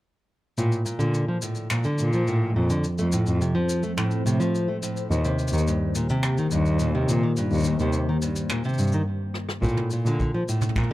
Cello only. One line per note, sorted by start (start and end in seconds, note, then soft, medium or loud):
0.58 0.68 A#2 medium
1.00 1.11 A#2 medium
2.00 2.50 A#2 medium
2.56 2.66 F2 medium
2.99 3.19 F2 medium
3.27 3.37 F2 medium
4.26 4.36 A2 medium
5.11 5.21 D#2 medium
5.53 5.63 D#2 medium
6.52 7.02 D#2 medium
7.09 7.19 A#2 medium
7.51 7.72 D#2 medium
7.80 7.90 D#2 medium
8.78 8.89 G2 medium
9.62 9.73 A#2 medium
10.05 10.16 A#2 medium